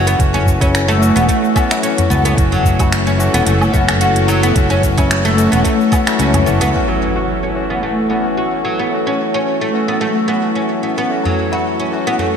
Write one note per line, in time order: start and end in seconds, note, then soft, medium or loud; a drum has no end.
0.00 0.15 F#1 loud
0.00 0.17 E3 medium
0.00 12.37 F#3 medium
0.00 0.18 A3 medium
0.00 12.37 A3 medium
0.00 0.20 C#4 medium
0.00 12.37 C#4 medium
0.00 12.37 E4 medium
0.00 0.21 F#4 medium
0.00 12.37 A4 medium
0.07 0.19 B3 loud
0.07 closed hi-hat soft
0.07 cabasa soft
0.17 1.11 F#1 loud
0.17 0.97 E3 medium
0.17 0.98 A3 medium
0.17 0.98 C#4 medium
0.17 kick loud
0.17 closed hi-hat medium
0.17 cabasa soft
0.21 0.99 F#4 loud
0.34 0.46 C#4 loud
0.34 tabla ge medium
0.34 cabasa soft
0.47 kick medium
0.47 cabasa medium
0.61 0.87 C#4 loud
0.61 kick medium
0.61 closed hi-hat soft
0.61 tabla na medium
0.61 cabasa soft
0.75 finger snap medium
0.75 closed hi-hat medium
0.75 cabasa soft
0.88 1.14 A3 loud
0.88 cabasa soft
1.00 1.53 E3 medium
1.00 1.53 A3 medium
1.00 1.53 C#4 medium
1.00 1.54 F#4 loud
1.00 tabla tin soft
1.00 cabasa medium
1.16 1.26 E1 loud
1.16 1.28 B3 loud
1.16 closed hi-hat soft
1.16 cabasa soft
1.29 1.43 A3 loud
1.29 kick medium
1.29 closed hi-hat medium
1.29 tabla tin medium
1.29 cabasa soft
1.44 cabasa soft
1.54 1.72 E3 medium
1.54 1.73 A3 medium
1.54 1.70 B3 loud
1.54 1.73 C#4 medium
1.54 1.73 F#4 loud
1.54 kick medium
1.54 cabasa medium
1.54 low woodblock medium
1.71 finger snap medium
1.71 closed hi-hat soft
1.71 tabla na medium
1.71 tabla tin medium
1.71 cabasa soft
1.83 2.09 C#4 medium
1.83 closed hi-hat medium
1.83 cabasa soft
1.98 closed hi-hat soft
1.98 tabla ge medium
1.98 cabasa soft
2.10 2.32 C#2 medium
2.10 2.24 B3 medium
2.10 cabasa medium
2.25 2.37 B3 loud
2.25 closed hi-hat soft
2.25 tabla na soft
2.25 cabasa soft
2.35 3.29 F#1 medium
2.35 3.15 E3 medium
2.35 3.16 A3 medium
2.35 3.17 C#4 medium
2.35 kick loud
2.35 closed hi-hat medium
2.35 cabasa soft
2.39 3.17 F#4 medium
2.52 2.78 F#3 medium
2.52 tabla ge medium
2.52 cabasa soft
2.65 kick medium
2.65 cabasa medium
2.79 2.91 F#4 medium
2.79 kick medium
2.79 closed hi-hat soft
2.79 tabla na medium
2.79 cabasa soft
2.79 low woodblock medium
2.92 finger snap medium
2.92 closed hi-hat medium
2.92 cabasa soft
3.07 3.19 C#4 medium
3.07 cabasa soft
3.18 3.71 E3 loud
3.18 3.71 A3 medium
3.18 3.71 C#4 medium
3.18 3.72 F#4 loud
3.18 tabla na soft
3.18 tabla tin medium
3.18 cabasa medium
3.34 3.44 E1 loud
3.34 3.46 B3 loud
3.34 closed hi-hat soft
3.34 cabasa soft
3.46 3.69 F#1 loud
3.46 3.61 A3 medium
3.46 closed hi-hat medium
3.46 tabla ge medium
3.46 cabasa soft
3.61 cabasa soft
3.61 low woodblock medium
3.72 4.52 F#1 medium
3.72 3.90 E3 medium
3.72 3.91 A3 medium
3.72 3.88 B3 medium
3.72 3.91 C#4 medium
3.72 3.91 F#4 loud
3.72 kick medium
3.72 tabla tin medium
3.72 cabasa medium
3.89 finger snap medium
3.89 closed hi-hat soft
3.89 tabla ge loud
3.89 cabasa soft
3.89 low woodblock medium
4.01 4.27 F#4 medium
4.01 closed hi-hat medium
4.01 cabasa soft
4.16 closed hi-hat soft
4.16 cabasa soft
4.28 4.42 F#3 loud
4.28 tabla tin soft
4.28 cabasa medium
4.43 4.55 B3 loud
4.43 closed hi-hat soft
4.43 cabasa soft
4.54 5.47 F#1 loud
4.54 5.34 E3 medium
4.54 5.34 A3 medium
4.54 5.35 C#4 medium
4.54 kick loud
4.54 closed hi-hat medium
4.54 cabasa soft
4.58 5.36 F#4 loud
4.70 4.82 C#4 loud
4.70 tabla ge medium
4.70 cabasa soft
4.83 kick medium
4.83 closed hi-hat soft
4.83 cabasa medium
4.98 5.24 C#4 loud
4.98 kick medium
4.98 closed hi-hat soft
4.98 tabla na medium
4.98 cabasa soft
4.98 low woodblock medium
5.11 finger snap medium
5.11 closed hi-hat medium
5.11 cabasa soft
5.25 5.51 A3 loud
5.25 cabasa soft
5.37 5.89 E3 medium
5.37 5.89 A3 medium
5.37 5.90 C#4 medium
5.37 5.90 F#4 loud
5.37 closed hi-hat soft
5.37 tabla tin medium
5.37 cabasa medium
5.52 5.62 E1 loud
5.52 5.64 B3 loud
5.52 closed hi-hat soft
5.52 cabasa soft
5.64 5.79 A3 loud
5.64 kick medium
5.64 closed hi-hat medium
5.64 tabla tin medium
5.64 cabasa soft
5.81 cabasa soft
5.92 6.06 B3 medium
5.92 kick loud
5.92 closed hi-hat soft
5.92 cabasa medium
5.92 low woodblock medium
6.06 6.43 E3 loud
6.06 6.44 A3 medium
6.06 6.44 C#4 medium
6.06 6.44 F#4 loud
6.06 finger snap medium
6.06 closed hi-hat soft
6.06 tabla na medium
6.06 tabla tin medium
6.06 cabasa soft
6.19 6.41 C#2 medium
6.19 6.45 C#4 medium
6.19 closed hi-hat medium
6.19 cabasa soft
6.34 closed hi-hat medium
6.34 tabla ge medium
6.34 cabasa soft
6.34 low woodblock medium
6.46 6.59 F#1 loud
6.46 6.71 E3 medium
6.46 6.71 A3 medium
6.46 6.60 B3 medium
6.46 6.71 C#4 medium
6.46 6.72 F#4 medium
6.46 cabasa medium
6.61 6.71 C#2 medium
6.61 6.73 B3 loud
6.61 closed hi-hat soft
6.61 tabla na soft
6.61 cabasa soft
6.72 7.52 E3 medium
6.72 7.52 A3 medium
6.72 12.37 B3 medium
6.72 7.53 C#4 medium
6.72 7.54 F#4 medium
6.72 12.37 B4 medium
6.72 impact medium
6.72 cabasa soft
6.88 7.14 F#3 medium
6.88 cabasa soft
7.16 7.28 F#4 medium
7.16 cabasa soft
7.43 7.55 C#4 medium
7.54 8.07 E3 medium
7.54 8.08 A3 medium
7.54 8.08 C#4 medium
7.54 8.08 F#4 medium
7.54 cabasa medium
7.70 7.82 B3 medium
7.70 cabasa soft
7.83 7.97 A3 medium
7.83 cabasa soft
7.99 cabasa soft
8.09 8.27 E3 medium
8.09 8.27 A3 medium
8.09 8.24 B3 medium
8.09 8.28 C#4 medium
8.09 8.28 F#4 medium
8.09 cabasa medium
8.26 cabasa soft
8.37 8.64 F#4 medium
8.37 cabasa soft
8.65 8.78 F#3 medium
8.65 cabasa medium
8.79 8.91 B3 medium
8.90 9.70 E3 medium
8.90 9.71 A3 medium
8.90 9.71 C#4 medium
8.90 cabasa soft
8.94 9.72 F#4 medium
9.07 9.19 C#4 medium
9.21 cabasa medium
9.34 9.60 C#4 medium
9.61 9.87 A3 medium
9.73 10.25 E3 medium
9.73 10.26 A3 medium
9.73 10.26 C#4 medium
9.73 10.26 F#4 medium
9.73 cabasa medium
9.88 10.00 B3 medium
10.01 10.15 A3 medium
10.27 10.45 E3 medium
10.27 10.46 A3 medium
10.27 10.42 B3 medium
10.27 10.46 C#4 medium
10.27 10.46 F#4 medium
10.45 cabasa soft
10.55 10.82 C#4 medium
10.83 10.96 B3 medium
10.83 cabasa medium
10.98 11.10 B3 medium
11.08 11.88 E3 medium
11.08 11.89 A3 medium
11.08 11.89 C#4 medium
11.08 11.90 F#4 medium
11.08 cabasa soft
11.25 11.51 F#3 medium
11.25 tabla ge medium
11.38 cabasa medium
11.52 11.64 F#4 medium
11.52 tabla na medium
11.66 cabasa soft
11.80 11.92 C#4 medium
11.91 12.37 E3 medium
11.91 12.37 A3 medium
11.91 12.37 C#4 medium
11.91 12.37 F#4 medium
11.91 tabla na soft
11.91 tabla tin soft
11.91 cabasa medium
12.07 12.19 B3 medium
12.19 12.33 A3 medium
12.19 tabla ge medium
12.19 cabasa soft